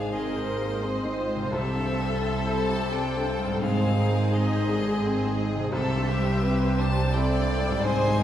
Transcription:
Already playing: G#1 G#2 D#3 G#3 C4 D4 G#4 C5 F5
0.11 C4 D#4 G#4 A#4 C5 D#5
0.36 C5
0.47 A#3 C5
0.58 G#4
0.81 C4 G#4 D#5
1.05 D#3
1.18 F4
1.29 G#3
1.35 C3
1.39 G3
1.43 C4
1.52 C2 C3 C4 G4 A4 C5 E5
1.75 G2
1.88 A4
1.98 G3
2.22 C4 E4 C5
2.46 C5
2.57 A5
2.69 G4
2.92 C4 D4 C5 G5
3.16 G2
3.27 C4
3.39 G3
3.45 G#2
3.49 G#3
3.54 C4
3.61 G#1 G#2 C4 G#4 C5 F5
3.86 D#3
3.99 A#4
4.09 G#3
4.32 C4 D#4 C5 D#5
4.56 C5
4.68 D3
4.79 G#4
5.03 C4 C5
5.26 D#3
5.37 D#5
5.49 G#3
5.55 C3
5.60 G3
5.64 C4
5.71 C2 C3 C4 G4 A4 C5 E5
5.96 G2
6.07 G4
6.19 G3
6.43 C4 B4
6.66 C5
6.78 D4 C5 A5
6.90 G4
7.13 C4 E4 A4 C5 D5 G5
7.37 G2
7.61 G3
7.67 G#2
7.71 G#3
7.76 C4
7.84 G#1 G#2 C4 G#4 C5 D#5 G#5
8.08 D#3
8.20 C4 A#4

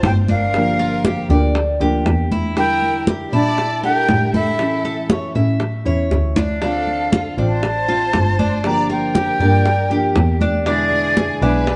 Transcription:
Already playing: F4
0.03 G1 D3 A3 C4 C5 G5, high bongo, low bongo, high conga
0.28 D4 A#4 F5, high conga
0.54 D3 F3 A#3 D4 G4, high bongo, high conga
0.79 F4, high bongo, high conga
1.05 G4, high bongo, high conga
1.30 D2 F3 A#3 D4 G4 D5, high bongo, high conga
1.55 muted nylon-string guitar stroke, high bongo, high conga
1.80 D2 F3 A#3 D4 G4, high bongo, high conga
2.06 E2 A#3 D4 G4, high bongo, low bongo, high conga
2.32 E4, high conga
2.56 D3 G3 D4 E4 A#4 G5, high bongo, high conga
2.82 high conga
3.07 G4, high bongo, high conga
3.32 A#2 G3 D4 E4 D5 A5, high conga
3.58 muted nylon-string guitar stroke, high bongo, high conga
3.83 G3 D4 E4 G4 A#4 G5, high conga
4.08 A2 D3 G3 D4 E4, high bongo, low bongo, high conga
4.34 E4 A4 E5, high conga
4.59 E3 A3 C#4 E4, high bongo, high conga
4.84 A4, high bongo, high conga
5.10 C#5, high bongo, high conga
5.35 A2 A3 C#4 E4 E5, high bongo, high conga
5.60 muted nylon-string guitar stroke, high bongo, high conga
5.85 E2 A3 C#4 E4 C#5, high bongo, high conga
6.11 D2 E3 A3 C#4 E4, high bongo, high conga
6.36 D4, low bongo, high conga
6.62 D3 A3 C4 D4 F4 A4 F5, high bongo, high conga
6.87 high conga
7.12 F4, high bongo, high conga
7.38 A1 A3 C4 D4 F4, high conga
7.47 C5 A5
7.63 muted nylon-string guitar stroke, high bongo, high conga
7.88 A3 C4 F4, high conga
8.13 G1 D3 A3 C4 F4, high bongo, low bongo, high conga
8.39 D4, high conga
8.64 D3 F3 A#3 D4 G4 D5 A#5, high bongo, high conga
8.89 F4 A#4 G5, high bongo, high conga
9.15 G4, high bongo, high conga
9.40 G2 F3 A#3 D4 G4 D5, high bongo, high conga
9.65 muted nylon-string guitar stroke, high bongo, high conga
9.90 F3 A#3 D4 G4, high bongo, high conga
10.16 E2 A#3 D4 G4, high bongo, low bongo, high conga
10.41 D4, high conga
10.66 B2 D3 G#3 B3 D4 E4 G#4 D5, high bongo, high conga
10.92 high conga
11.17 G#4, high bongo, high conga
11.42 B1 D3 G#3 B3 D4 E4 B4 G#5, high conga
11.67 muted nylon-string guitar stroke, high bongo, high conga

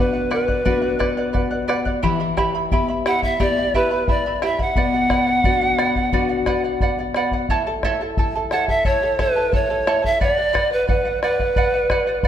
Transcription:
Already playing: B2 B3 D4 F#4 B4 D5
0.00 B4 F#5
0.13 D5 F#5
0.30 B4 D5 F#5, bombo rim
0.48 D5 F#5, bombo low
0.65 B3 D4 F#4 B4 D5 F#5, bombo low
0.82 D5 F#5
0.99 B4 D5 F#5, bombo rim, bombo low
1.17 D5 F#5
1.33 B4 D5 F#5, bombo low
1.51 D5 F#5
1.68 B4 D5 F#5, bombo rim
1.85 D5 F#5, bombo low
2.03 E3 E4 G4 E5 G5 B5, bombo low
2.20 E4 E5 B5
2.37 E4 G4 E5 G5 B5, bombo rim, bombo low
2.55 E4 E5 B5
2.72 B3 E4 G4 E5 G5 B5, bombo low
2.88 E4 E5 B5
3.06 E4 G4 E5 F#5 G5 B5, bombo rim
3.22 E4 E5 B5, bombo low
3.40 B3 E4 G4 D5 E5 G5 B5, bombo low
3.57 E4 E5 B5
3.74 E4 G4 B4 E5 G5 B5, bombo low
3.91 E4 E5 B5
4.08 E4 D5 E5 G5 B5, bombo low
4.26 E4 E5 B5
4.42 E4 G4 E5 G5 B5, bombo rim
4.59 E4 E5 F#5 B5, bombo low
4.76 B2 B4 D5 F#5, bombo low
4.94 D5 F#5
5.10 B4 D5 F#5, bombo rim, bombo low
5.27 D5 F#5
5.44 B3 D4 F#4 B4 D5 F#5, bombo low
5.61 D5 F#5
5.78 B4 D5 F#5, bombo rim
5.96 D5 F#5, bombo low
6.12 B3 D4 F#4 B4 D5 F#5, bombo low
6.29 D5 F#5
6.46 B4 D5 F#5, bombo rim, bombo low
6.64 D5 F#5
6.80 B4 D5 F#5, bombo low
6.99 D5 F#5
7.14 B4 D5 F#5, bombo rim
7.31 D5 F#5, bombo low
7.49 E4 A4 C#5 E5 A5, bombo low
7.67 E4 A4 A5
7.83 E4 A4 C#5 E5 A5, bombo rim, bombo low
8.01 E4 A4 A5
8.17 E4 A4 E5 A5, bombo low
8.35 E4 A4 A5
8.51 E4 A4 C#5 E5 F#5 A5, bombo rim
8.68 E4 A4 E5 A5, bombo low
8.85 E4 A4 C#5 E5 A5, bombo low
9.02 E4 A4 A5
9.19 E4 A4 B4 C#5 E5 A5, bombo rim, bombo low
9.36 E4 A4 A5
9.52 E4 A4 C#5 E5 A5, bombo low
9.70 E4 A4 A5
9.87 E4 A4 C#5 E5 A5, bombo rim
10.02 E4 A4 E5 A5, bombo low
10.20 B4 D5 F#5, bombo low
10.38 D5 F#5
10.53 B4 D5 F#5, bombo rim, bombo low
10.70 B4 D5 F#5
10.87 B4 D5 F#5, bombo low
11.05 D5 F#5
11.23 B4 D5 F#5, bombo rim
11.39 D5 F#5, bombo low
11.56 B4 D5 F#5, bombo low
11.74 D5 F#5
11.90 B4 D5 F#5, bombo rim, bombo low
12.07 D5 F#5
12.23 B4 D5, bombo low

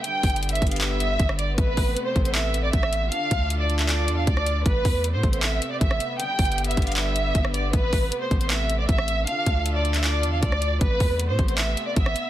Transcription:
0.04 D3 G3 B3 G5, closed hi-hat
0.23 G1, kick, closed hi-hat, open hi-hat
0.30 closed hi-hat
0.36 closed hi-hat
0.43 closed hi-hat
0.49 E5, closed hi-hat
0.55 closed hi-hat
0.62 G1, kick, closed hi-hat
0.67 closed hi-hat
0.71 F5, closed hi-hat
0.76 closed hi-hat
0.81 E5, clap, closed hi-hat
1.00 closed hi-hat
1.20 G1, kick, closed hi-hat
1.29 cross-stick
1.39 D5, closed hi-hat
1.58 A1 C3 A3 B3 B4, kick, closed hi-hat
1.77 A1, kick, open hi-hat
1.97 closed hi-hat
2.06 C5
2.16 A1, kick, closed hi-hat
2.25 C5, closed hi-hat
2.35 E5, clap, closed hi-hat
2.54 closed hi-hat
2.64 D5
2.73 A1 E5, kick, closed hi-hat
2.83 cross-stick
2.93 closed hi-hat
3.12 D3 D4 F4 A4 F5, closed hi-hat
3.31 D2, kick, closed hi-hat
3.50 closed hi-hat
3.60 D5
3.70 closed hi-hat
3.79 E5, clap, closed hi-hat
3.89 D5, clap, closed hi-hat
4.08 E2, closed hi-hat
4.18 F5
4.27 D2 D5, kick, closed hi-hat
4.37 cross-stick
4.46 closed hi-hat
4.66 A1 C3 A3 B3 B4, kick, closed hi-hat
4.85 E2, kick, open hi-hat
5.04 closed hi-hat
5.14 A2 C5
5.23 A1, kick, closed hi-hat
5.33 C5, closed hi-hat
5.43 E5, clap, closed hi-hat
5.62 closed hi-hat
5.71 D5
5.81 A1 E5, kick, closed hi-hat
5.91 cross-stick
6.00 closed hi-hat
6.20 D3 G3 G5, closed hi-hat
6.39 G1, kick, closed hi-hat, open hi-hat
6.45 closed hi-hat
6.52 closed hi-hat
6.58 closed hi-hat
6.64 E5, closed hi-hat
6.71 closed hi-hat
6.77 G1, kick, closed hi-hat
6.82 closed hi-hat
6.87 F5, closed hi-hat
6.92 closed hi-hat
6.96 E5, clap, closed hi-hat
7.16 closed hi-hat
7.35 G1, kick, closed hi-hat
7.45 cross-stick
7.54 D5, closed hi-hat
7.73 A1 C3 A3 B4, kick, closed hi-hat
7.93 A1, kick, open hi-hat
8.12 closed hi-hat
8.22 C5
8.31 A1, kick, closed hi-hat
8.41 C5, closed hi-hat
8.50 E5, clap, closed hi-hat
8.70 closed hi-hat
8.79 D5
8.89 A1 E5, kick, closed hi-hat
8.98 cross-stick
9.08 closed hi-hat
9.27 D3 D4 F4 A4 F5, closed hi-hat
9.46 D2, kick, closed hi-hat
9.66 closed hi-hat
9.75 D5
9.85 closed hi-hat
9.94 E5, clap, closed hi-hat
10.04 D5, clap, closed hi-hat
10.23 E2, closed hi-hat
10.33 F5
10.43 D2 D5, kick, closed hi-hat
10.52 cross-stick
10.62 closed hi-hat
10.81 A1 C3 A3 B3 B4, kick, closed hi-hat
11.00 E2, kick, open hi-hat
11.20 closed hi-hat
11.29 A2 C5
11.39 A1, kick, closed hi-hat
11.48 C5, closed hi-hat
11.58 E5, clap, closed hi-hat
11.77 closed hi-hat
11.87 D5
11.96 A1 E5, kick, closed hi-hat
12.06 cross-stick
12.16 closed hi-hat

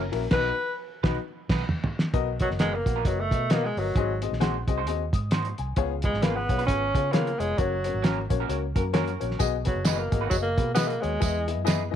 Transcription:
Already playing: A#4
0.12 A#1 A#3 C#4 E4 F#4 A#4, open hi-hat, ride
0.31 B1 B2 B3 D#4 F#4 B4, kick, snare, crash
1.03 B1 B3 D#4 F#4 B4, kick, snare
1.49 B1 B3 D#4 F#4 B4, kick, snare, crash
1.69 mid tom
1.84 floor tom
1.99 snare
2.14 B1 B2 B3 F#4 A#4 D#5, kick, closed hi-hat
2.40 F#3 B3 F#4 A#4 D#5, kick, closed hi-hat
2.50 F#1, snare
2.59 F#3 G#3 B3 D#4 F#4 A#4 F#5, snare, closed hi-hat
2.75 A#3
2.86 A#1 B3 F#4 A#4 F#5, kick, closed hi-hat
2.96 F#3 B3 D#4 A#4
3.05 F#1 F#3 B3 F#4 A#4 D#5, kick, closed hi-hat
3.20 A3
3.31 B2 B3 F#4 A#4 D#5, kick, closed hi-hat
3.50 F#3 A#3 B3 D#4 F#4 A#4 D#5, snare, closed hi-hat
3.65 G#3
3.77 G1 F#3 B3 F#4 A#4 D#5, open hi-hat
3.95 G#1 G#2 C4 F#4 G#4 D#5, kick, closed hi-hat
4.22 C4 F#4 G#4 D#5, closed hi-hat
4.31 A#1, snare
4.40 G#3 C4 D#4 F#4 G#4 C5 F#5, snare, closed hi-hat
4.68 C2 C4 F#4 G#4 D#5, kick, closed hi-hat
4.78 G#3 D#4 F#4 C5
4.87 D#2 C4 F#4 G#4 D#5, closed hi-hat
5.13 G#2 D#6, kick, closed hi-hat
5.31 G#3 D#4 F#4 C5 C6, snare, closed hi-hat
5.45 closed hi-hat
5.58 C2 G#5, closed hi-hat
5.76 C#2 C#3 B3 F4 G#4 C#5, kick, closed hi-hat
6.02 G#3 B3 F4 G#4 B4, kick, closed hi-hat
6.14 G#1, snare
6.22 G#3 A#3 B3 C#4 F4 G#4 B4, snare, closed hi-hat
6.36 B3
6.49 B1 B3 F4 G#4 C#5, kick, closed hi-hat
6.58 G#3 C#4 F4 B4, closed hi-hat
6.67 G#1 B3 C#4 F4 G#4 C#5, kick, closed hi-hat
6.95 C#3 B3 F4 G#4 C#5, kick, closed hi-hat
7.13 G#3 A#3 B3 C#4 F4 G#4 B4 C#5, snare, closed hi-hat
7.27 closed hi-hat
7.39 F1 G#3 B3 F4 G#4 C#5, closed hi-hat
7.58 F#1 F#3 A#3 C#4 F#4 C#5, kick, closed hi-hat
7.84 A#3 C#4 F#4 C#5, closed hi-hat
7.94 G#1
8.02 A#3 C#4 F#4 A#4, snare, closed hi-hat
8.30 A#1 A#3 C#4 F#4 C#5, kick, closed hi-hat
8.40 A#3 C#4 F#4 A#4
8.48 C#2 A#3 C#4 F#4 A#4 C#5, closed hi-hat
8.75 F#2 A#3 C#4 F#4 A#4, kick, closed hi-hat
8.93 A#3 C#4 F#4 A#4 C#5, snare, closed hi-hat
9.07 closed hi-hat
9.20 A#1 A#3 C#4 F#4 C#5, closed hi-hat
9.31 snare
9.39 B1 B2 B3 F#4 G#4 D#5, kick, closed hi-hat, tambourine
9.65 F#3 B3 F#4 G#4 B4, kick, closed hi-hat
9.75 F#1
9.84 G#3 B3 D#4 F#4 G#4 B4 D#5, snare, closed hi-hat, tambourine
9.98 A#3
10.11 G#1 B3 F#4 G#4 D#5, kick, closed hi-hat
10.21 G#3 D#4 F#4 B4
10.30 F#1 F#3 B3 F#4 G#4 D#5, kick, closed hi-hat, tambourine
10.42 A#3
10.57 B2 B3 F#4 G#4 B4, kick, closed hi-hat
10.75 G#3 B3 D#4 F#4 G#4 B4 D#5, snare, closed hi-hat, tambourine
10.88 A#3, closed hi-hat
11.01 D#2 G#3 B3 F#4 G#4 C#5, closed hi-hat
11.20 E2 E3 B3 E4 G#4 D#5, kick, closed hi-hat, tambourine
11.47 B3 E4 G#4 D#5, closed hi-hat
11.58 F#2
11.64 B3 D#4 E4 G#4 B4 D#5, snare, closed hi-hat, tambourine
11.90 B3 E4 G#4 D#5

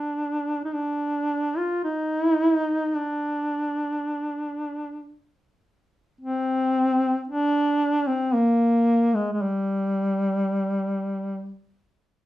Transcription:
Already playing: D4
0.65 D#4
0.73 D4
1.57 F4
1.84 D#4
2.96 D4
6.21 C4
7.28 D4
8.07 C4
8.34 A#3
9.15 G#3
9.32 G#3
9.42 G3

